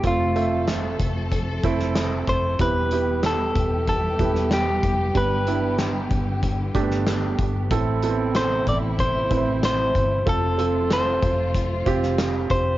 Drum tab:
HH |x-x-x-x-x-x-x-x-|x-x-x-x-x-x-x-x-|x-x-x-x-x-x-x-x-|x-x-x-x-x-x-x-x-|
CP |----x-------x---|----x-------x---|----x-------x---|----x-------x---|
SD |----o------oo---|----o------oo---|----o------oo---|----o-------o---|
BD |o-----o-o-o---o-|o-----o-o-o---o-|o-----o-o-o---o-|o-----o-o-o---o-|

HH |x-x-x-x-x-x-x-x-|
CP |----x-------x---|
SD |----o------oo---|
BD |o-----o-o-o---o-|